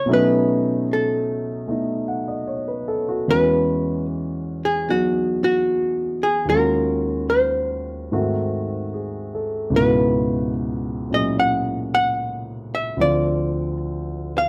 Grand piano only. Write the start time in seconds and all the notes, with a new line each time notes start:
0.06 B2 F#3 A3 C#4
0.10 D#4
1.68 A3 B3 D#4
2.08 F#5
2.28 D#5
2.47 C#5
2.68 B4
2.88 A4
3.09 F#4
3.28 E2 E3 G#3 C#4 F#4
4.88 F#3 B3 D#4 G#4
6.45 D#2 D#3
6.49 G#3 C#4
6.54 F4 F#4
8.12 G#2 D#3 A3 C4 F#4
8.94 G#4
9.35 A4
9.70 C#2 G#2
9.74 B2 E3
9.81 F#4
11.10 A#2 F#3 C#4 E4 G#4
12.97 D2 D3 F3 C4
13.01 F4